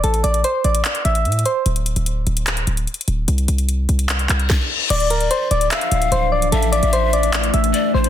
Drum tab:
CC |------------------------------------------------|------------------------------------------------|------------------------------------------------|x-----------------------------------------------|
HH |x--x--x--x--x-----x--x--x--x--x--x--x-x-x-x-----|x--x--x--x--x-----x--x--x--x--x--x--x-x-x-x-----|x--x--x--x--x-----x--x--x--x--x--x--------------|x--x--x--x--x-----x--x--x--x--x--x--x--------x--|
CP |------------------------x-----------------------|------------------------x-----------------------|------------------------x-----x-----------------|------------------------x-----------------------|
SD |------------------------------------------------|------------------------------------------------|------------------------------------o-----------|------------------------------------------------|
BD |------------------------------------------------|------------------------------------------------|------------------------------------o-----------|------------------------------------------------|

CC |------------------------------------------------|
HH |x--x--x--x--x-----x--x--x--x--x--x--x--------x--|
CP |------------------------x-----------------------|
SD |------------------------------------------------|
BD |------------------------------------------------|